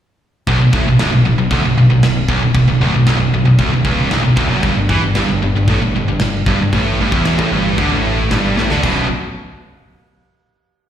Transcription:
0.47 B0 B1, kick, china
0.61 B0 B1
0.73 A1 A2, kick
0.87 B0 B1
0.99 B0 B1, snare, china
1.12 B0 B1
1.25 B0 B1
1.38 B0 B1
1.51 D1 D2, kick, china
1.65 B0 B1
1.77 B0 B1
1.90 B0 B1
2.03 B0 B1, snare, china
2.29 B0 B1, kick
2.41 B0 B1
2.55 B0 B1, kick, china
2.68 B0 B1
2.80 D1 D2
2.93 B0 B1
3.06 B0 B1, snare, china
3.20 B0 B1
3.33 B0 B1
3.45 B0 B1
3.59 D1 D2, kick, china
3.72 B0 B1
3.85 C#1 C#2, kick
4.11 B0 B1, snare, china
4.24 B0 B1
4.37 D1 D2, kick
4.50 F#1 F#2
4.63 G1 G2, kick, china
4.76 G1 G2
4.89 E2 E3, kick
5.03 G1 G2
5.15 G1 G2, snare, china
5.29 G1 G2
5.42 G1 G2
5.55 G1 G2
5.68 A1 A2, kick, china
5.81 G1 G2
5.95 G1 G2
6.07 G1 G2
6.20 G1 G2, snare, china
6.46 G1 G2, kick
6.60 G1 G2
6.73 A1 A2, kick, china
7.00 G1 G2
7.12 E1 E2, kick
7.25 snare, china
7.39 A1 A2, kick
7.52 G1 G2
7.78 D2 D3, kick, china
7.91 A1 A2
8.31 G1 G2, snare, china
8.57 A1 A2, snare
8.70 D2 D3, snare
8.83 B0 B1 F#2 B2, kick, splash

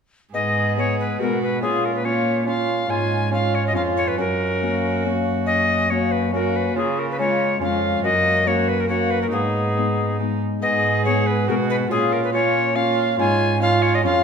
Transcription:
0.33 G#2 B3 G#4 D#5
0.76 G#3 B3 G#4 C#5
1.00 B4
1.18 B2 G#3 F#4 G#4 A#4
1.23 B3
1.43 B4
1.62 A#2 C#4 F4 G#4
1.85 A#4
1.96 B4
2.05 C#4 F4 C#5
2.46 C#4 F4 F5
2.89 G#2 C#4 F4 G#5
3.31 C#4 F4 F5
3.55 C#5
3.67 D#5
3.73 F2 C#4 F4 F5
3.97 C#5
4.08 B4
4.18 F#2 C#4 F#4 A#4
4.62 A#3 C#4 F#4
5.05 A#3 C#4 F#4
5.46 D#5
5.90 A#3 C#4 F#4 C#5
6.12 B4
6.33 A#3 C#4 F#4 A#4
6.56 B4
6.75 C#3 C#4 F4 G#4
6.99 A#4
7.11 B4
7.18 G#3 C#4 F4 C#5
7.61 F2 G#3 C#4 F4 F5
8.04 F#2 A#3 F#4 D#5
8.46 A#3 C#4 F#4 C#5
8.69 B4
8.80 A#4
8.89 A#3 C#4 F#4 C#5
9.11 B4
9.22 A#4
9.31 G#2 B3 D#4 G#4
9.76 G#3 B3 D#4
10.20 G#3 B3 D#4
10.62 G#2 B3 G#4 D#5
11.05 G#3 B3 G#4 C#5
11.27 B4
11.48 B2 G#3 B3 F#4 G#4 A#4
11.70 B4
11.91 A#2 C#4 F4 G#4
12.13 A#4
12.24 B4
12.33 C#4 F4 C#5
12.76 C#4 F4 F5
13.19 G#2 C#4 F4 G#5
13.61 C#4 F4 F5
13.82 C#5
13.95 D#5
14.02 F2 C#4 F4 F5
14.07 F4

